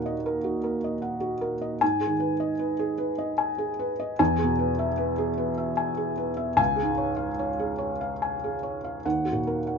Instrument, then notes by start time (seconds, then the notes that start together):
felt piano
Already playing: D#2 A#2 F#4 A#4 F#5
0.06 D#5
0.26 A#4
0.44 F#4
0.64 A#4
0.84 D#5
1.02 F#5
1.20 F#4
1.41 A#4
1.61 D#5
1.81 G#2 G#5
2.00 G#4
2.06 D#3
2.20 B4
2.40 D#5
2.59 B4
2.79 G#4
2.98 B4
3.18 D#5
3.38 G#5
3.58 G#4
3.79 B4
4.00 D#5
4.19 E2 G#5
4.38 G#4
4.44 B2
4.59 B4
4.79 E5
4.97 B4
5.18 G#4
5.38 B4
5.58 E5
5.77 G#5
5.97 G#4
6.17 B4
6.37 E5
6.57 C#2 G#5
6.76 G#4
6.83 G#2
6.98 C#5
7.16 F5
7.39 C#5
7.59 G#4
7.78 C#5
8.01 F5
8.22 G#5
8.44 G#4
8.63 C#5
8.84 F5
9.05 D#2 F#5
9.25 F#4
9.32 A#2
9.47 A#4
9.67 F#5